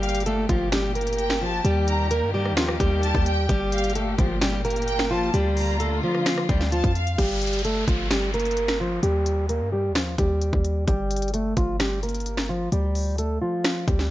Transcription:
Already playing: 808-style bass G1, string section A#2 A#3 G4, steel-string acoustic guitar G3 G4
0.03 violin section F5, closed hi-hat
0.09 closed hi-hat
0.15 closed hi-hat
0.20 closed hi-hat
0.26 steel-string acoustic guitar A3 A4, closed hi-hat
0.49 808-style bass G1, steel-string acoustic guitar F3 F4, kick, closed hi-hat
0.72 steel-string acoustic guitar G3 G4, finger snap, snare, closed hi-hat
0.95 steel-string acoustic guitar A#3 A#4, closed hi-hat
1.01 closed hi-hat
1.07 closed hi-hat
1.13 closed hi-hat
1.18 violin section G5, closed hi-hat
1.30 finger snap, snare
1.42 steel-string acoustic guitar F3 F4, violin section A5
1.65 808-style bass D#2, string section D#3 A#3, steel-string acoustic guitar G3 G4, closed hi-hat
1.88 violin section A#5, closed hi-hat
2.11 steel-string acoustic guitar A#3 A#4, closed hi-hat
2.22 808-style bass G2
2.34 steel-string acoustic guitar G3 G4
2.45 cross-stick
2.51 808-style bass D#2
2.57 steel-string acoustic guitar F3 F4, finger snap, snare, closed hi-hat
2.68 cross-stick
2.80 808-style bass D#2, steel-string acoustic guitar G3 G4, kick, closed hi-hat
3.03 violin section A5, closed hi-hat
3.15 808-style bass D#2, kick
3.26 violin section G5, closed hi-hat
3.49 808-style bass G1, string section A#2 A#3, steel-string acoustic guitar G3 G4, kick, closed hi-hat
3.72 violin section F5, closed hi-hat
3.78 closed hi-hat
3.84 closed hi-hat
3.90 closed hi-hat
3.95 steel-string acoustic guitar A3 A4, closed hi-hat
4.19 808-style bass G1, steel-string acoustic guitar F3 F4, kick, closed hi-hat
4.42 steel-string acoustic guitar G3 G4, finger snap, snare, closed hi-hat
4.65 steel-string acoustic guitar A#3 A#4, closed hi-hat
4.70 closed hi-hat
4.76 closed hi-hat
4.82 closed hi-hat
4.87 violin section G5, closed hi-hat
4.99 finger snap, snare
5.11 steel-string acoustic guitar F3 F4, violin section A5
5.34 808-style bass D2, string section D3 F4, steel-string acoustic guitar G3 G4, closed hi-hat
5.57 violin section A#5, open hi-hat
5.80 steel-string acoustic guitar A3 A4, closed hi-hat
6.03 steel-string acoustic guitar F3 F4
6.15 cross-stick
6.26 finger snap, snare, closed hi-hat
6.38 cross-stick
6.49 808-style bass D2, steel-string acoustic guitar G3 G4, kick, closed hi-hat
6.61 snare
6.72 steel-string acoustic guitar F3 F4, violin section A5, closed hi-hat
6.84 808-style bass F2, kick, closed hi-hat
6.95 violin section F5, closed hi-hat
7.07 closed hi-hat
7.18 808-style bass G1, steel-string acoustic guitar G3 G4, kick, closed hi-hat, crash, downlifter
7.42 closed hi-hat
7.47 closed hi-hat
7.53 closed hi-hat
7.59 closed hi-hat
7.65 steel-string acoustic guitar A3 A4, closed hi-hat
7.88 808-style bass G1, steel-string acoustic guitar F3 F4, kick, closed hi-hat
8.11 steel-string acoustic guitar G3 G4, finger snap, snare, closed hi-hat
8.34 steel-string acoustic guitar A#3 A#4, closed hi-hat
8.40 closed hi-hat
8.45 closed hi-hat
8.51 closed hi-hat
8.57 closed hi-hat
8.68 finger snap, snare
8.80 steel-string acoustic guitar F3 F4
9.03 808-style bass D#2, steel-string acoustic guitar G3 G4, closed hi-hat
9.26 closed hi-hat
9.49 steel-string acoustic guitar A#3 A#4, closed hi-hat
9.61 808-style bass G2
9.72 steel-string acoustic guitar G3 G4
9.90 808-style bass D#2
9.95 steel-string acoustic guitar F3 F4, finger snap, snare, closed hi-hat
10.18 808-style bass D#2, steel-string acoustic guitar G3 G4, kick, closed hi-hat
10.42 closed hi-hat
10.53 808-style bass D#2, kick
10.65 closed hi-hat
10.87 808-style bass G1, steel-string acoustic guitar G3 G4, kick, closed hi-hat
11.11 closed hi-hat
11.16 closed hi-hat
11.22 closed hi-hat
11.28 closed hi-hat
11.34 steel-string acoustic guitar A3 A4, closed hi-hat
11.57 808-style bass G1, steel-string acoustic guitar F3 F4, kick, closed hi-hat
11.80 steel-string acoustic guitar G3 G4, finger snap, snare, closed hi-hat
12.03 steel-string acoustic guitar A#3 A#4, closed hi-hat
12.09 closed hi-hat
12.15 closed hi-hat
12.20 closed hi-hat
12.26 closed hi-hat
12.37 finger snap, snare
12.49 steel-string acoustic guitar F3 F4
12.72 808-style bass D2, steel-string acoustic guitar G3 G4, closed hi-hat
12.95 open hi-hat
13.18 steel-string acoustic guitar A3 A4, closed hi-hat
13.42 steel-string acoustic guitar F3 F4
13.64 finger snap, snare, closed hi-hat
13.88 808-style bass D2, steel-string acoustic guitar G3 G4, kick, closed hi-hat
13.99 snare

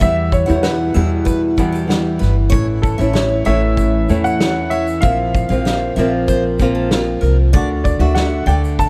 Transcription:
0.00 upright bass E2, nylon-string guitar E3 G3 B3 E4, steel-string acoustic guitar E5, upright piano E5, kick, shaker
0.32 upright piano C#5, kick, shaker
0.46 nylon-string guitar E2 B2 E3 G3 B3 E4, upright bass E2, steel-string acoustic guitar F#5, shaker
0.56 upright piano C#5
0.63 upright piano B4, steel-string acoustic guitar F#5, snare, shaker
0.94 nylon-string guitar E2 B2 E3 G3 B3 E4, upright bass E2, steel-string acoustic guitar E5, shaker
1.25 steel-string acoustic guitar B4, kick, shaker
1.58 nylon-string guitar E2 B2 E3 G3 B3 E4, kick, shaker
1.72 steel-string acoustic guitar G4, shaker
1.87 nylon-string guitar E3 G3 B3 E4, snare, shaker
2.19 upright bass G1, steel-string acoustic guitar B4, snare, shaker
2.50 upright bass A1, nylon-string guitar E3 A3 C#4, steel-string acoustic guitar C#5, kick, shaker
2.54 nylon-string guitar E4
2.82 upright piano A4, kick, shaker
2.98 upright bass A1, nylon-string guitar A2 E3 A3 C#4 E4, steel-string acoustic guitar E5, shaker
3.13 upright piano C#5, steel-string acoustic guitar E5, snare, shaker
3.45 upright bass A1, nylon-string guitar A2 E3 A3 C#4 E4, steel-string acoustic guitar C#5, upright piano E5, shaker
3.77 kick, shaker
4.09 upright bass E2, nylon-string guitar A2 E3 A3 C#4 E4, shaker
4.24 upright piano F#5, shaker
4.40 nylon-string guitar E3 A3 C#4 E4, snare, shaker
4.70 steel-string acoustic guitar C#5, upright piano E5, shaker
4.87 shaker
5.01 upright bass A#1, nylon-string guitar F3 A#3 C4, steel-string acoustic guitar E5, upright piano F5, kick, shaker
5.05 nylon-string guitar F4
5.35 kick, shaker
5.49 upright bass A#1, nylon-string guitar F3 A#3 C4 F4, steel-string acoustic guitar F5, shaker
5.53 nylon-string guitar A#2
5.65 steel-string acoustic guitar F5, snare, shaker
5.96 upright bass A#1, nylon-string guitar A#2 F3 A#3 C4 F4, steel-string acoustic guitar E5, shaker
6.28 steel-string acoustic guitar C5, kick, shaker
6.59 nylon-string guitar A#2 F3 A#3 C4 F4, kick, shaker
6.75 steel-string acoustic guitar A4
6.91 nylon-string guitar F3 A#3 C4 F4, snare, shaker
7.21 upright bass C2, steel-string acoustic guitar A#4, shaker
7.53 upright bass D2, nylon-string guitar D3 A3 D4 F#4, steel-string acoustic guitar D5, kick, shaker
7.84 upright piano D5, kick, shaker
7.99 upright bass D2, nylon-string guitar D3 A3 D4 F#4, steel-string acoustic guitar E5
8.15 steel-string acoustic guitar E5, upright piano F#5, snare, shaker
8.46 upright bass D2, nylon-string guitar D3 A3 D4, steel-string acoustic guitar D5, upright piano G5, shaker
8.64 shaker
8.79 upright piano A5, kick, shaker

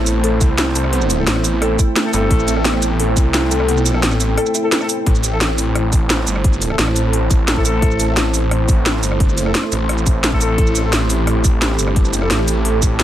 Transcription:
Already playing: detuned saw bass A1, analog synth pad A3 C4 E4 C5, ambient pad E4 A4 C5 G5
0.07 closed hi-hat, shaker
0.24 synth pluck A4, closed hi-hat
0.41 detuned saw bass C2, synth pluck E4, kick, closed hi-hat, shaker
0.58 synth pluck E4, snare, closed hi-hat
0.75 synth pluck A4, closed hi-hat, shaker
0.84 cross-stick
0.93 synth pluck B3, closed hi-hat
1.01 shaker
1.10 closed hi-hat, shaker
1.19 brass ensemble A3 E4 A4
1.27 detuned saw bass A1, synth pluck B3, snare, closed hi-hat
1.36 cross-stick
1.44 closed hi-hat, shaker
1.62 synth pluck A4, cross-stick, closed hi-hat
1.79 synth pluck E4, kick, closed hi-hat, shaker
1.96 synth pluck A3, snare, closed hi-hat
2.05 brass ensemble A3 E4 A4
2.13 detuned saw bass G1, synth pluck A3, brass ensemble A3 E4 A4, closed hi-hat, shaker
2.31 detuned saw bass A1, synth pluck A3, analog synth pad A4, kick, closed hi-hat
2.39 shaker
2.48 synth pluck C4, closed hi-hat, shaker
2.56 brass ensemble A3 E4 A4, cross-stick
2.65 synth pluck B3, snare, closed hi-hat
2.74 cross-stick
2.82 closed hi-hat, shaker
3.00 synth pluck A4, closed hi-hat
3.17 detuned saw bass C2, synth pluck E4, kick, closed hi-hat, shaker
3.34 synth pluck E4, snare, closed hi-hat
3.51 synth pluck A4, closed hi-hat, shaker
3.60 cross-stick
3.69 synth pluck B3, closed hi-hat
3.77 detuned saw bass B1, shaker
3.86 closed hi-hat, shaker
3.94 brass ensemble A3 E4 A4, cross-stick
4.03 detuned saw bass A1, synth pluck B3, snare, closed hi-hat
4.12 cross-stick, shaker
4.20 closed hi-hat, shaker
4.38 synth pluck A4, cross-stick, closed hi-hat
4.46 shaker
4.55 synth pluck E4, closed hi-hat, shaker
4.63 brass ensemble A3 E4 A4
4.72 synth pluck B3, snare, closed hi-hat
4.81 brass ensemble A3 E4 A4, cross-stick, shaker
4.89 closed hi-hat, shaker
5.06 detuned saw bass A1, analog synth pad A3 C4 E4 C5, ambient pad E4, kick, closed hi-hat
5.13 ambient pad A4, shaker
5.24 closed hi-hat, shaker
5.32 brass ensemble A3 E4 A4
5.37 ambient pad C5 A5
5.41 detuned saw bass A1, snare, closed hi-hat
5.58 closed hi-hat, shaker
5.75 cross-stick, closed hi-hat
5.93 detuned saw bass A1, kick, closed hi-hat, shaker
6.10 snare, closed hi-hat
6.27 detuned saw bass G1, closed hi-hat, shaker
6.36 cross-stick
6.44 kick, closed hi-hat
6.53 shaker
6.62 closed hi-hat, shaker
6.70 brass ensemble A3 E4 A4, cross-stick
6.79 detuned saw bass A1, snare, closed hi-hat
6.87 cross-stick
6.96 closed hi-hat, shaker
7.13 closed hi-hat
7.31 detuned saw bass A1, kick, closed hi-hat, shaker
7.48 snare, closed hi-hat
7.56 brass ensemble A3 E4 A4, kick
7.65 brass ensemble A3 E4 A4, closed hi-hat, shaker
7.82 detuned saw bass A1, kick, closed hi-hat
7.91 shaker
8.00 closed hi-hat, shaker
8.08 brass ensemble A3 E4 A4
8.14 detuned saw bass A1, ambient pad C6, snare, closed hi-hat
8.34 closed hi-hat, shaker
8.51 cross-stick, closed hi-hat
8.69 detuned saw bass A1, kick, closed hi-hat, shaker
8.86 snare, closed hi-hat
9.03 detuned saw bass G1, closed hi-hat, shaker
9.12 cross-stick
9.20 kick, closed hi-hat
9.29 shaker
9.38 closed hi-hat, shaker
9.46 brass ensemble A3 E4 A4, cross-stick
9.55 snare, closed hi-hat
9.63 cross-stick
9.72 detuned saw bass A1, closed hi-hat, shaker
9.89 cross-stick, closed hi-hat
9.98 shaker
10.06 kick, closed hi-hat, shaker
10.24 snare, closed hi-hat
10.32 brass ensemble A3 E4 A4, kick
10.41 brass ensemble A3 E4 A4, closed hi-hat, shaker
10.58 detuned saw bass A1, analog synth pad G4, kick, closed hi-hat
10.67 shaker
10.75 closed hi-hat, shaker
10.84 brass ensemble A3 E4 A4
10.90 detuned saw bass A1, ambient pad A5, snare, closed hi-hat
11.10 closed hi-hat, shaker
11.27 cross-stick, closed hi-hat
11.44 detuned saw bass A1, kick, closed hi-hat, shaker
11.62 snare, closed hi-hat
11.79 detuned saw bass G1, closed hi-hat, shaker
11.88 cross-stick
11.96 kick, closed hi-hat
12.05 shaker
12.13 closed hi-hat, shaker
12.22 brass ensemble A3 E4 A4, cross-stick
12.31 detuned saw bass A1, snare, closed hi-hat
12.39 cross-stick
12.48 closed hi-hat, shaker
12.65 closed hi-hat
12.82 detuned saw bass A1, kick, closed hi-hat, shaker
13.00 snare, closed hi-hat

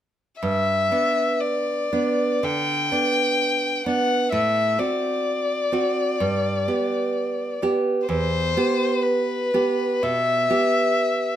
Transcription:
0.41 nylon-string guitar G2, violin E5
0.92 nylon-string guitar B3 D4
1.41 violin D5
1.93 nylon-string guitar B3 D4
2.43 nylon-string guitar D3, violin G5
2.92 nylon-string guitar B3 D4
3.86 nylon-string guitar B3 D4, violin F#5
4.32 nylon-string guitar A2, violin E5
4.79 nylon-string guitar C4 F#4, violin D5
5.72 nylon-string guitar C4 F#4
6.20 nylon-string guitar G2
6.68 nylon-string guitar B3 G4
7.62 nylon-string guitar B3 G4
8.07 nylon-string guitar E2, violin C5
8.57 nylon-string guitar B3 G4
9.02 violin B4
9.54 nylon-string guitar B3 G4
10.03 nylon-string guitar B2, violin E5
10.50 nylon-string guitar B3 G4

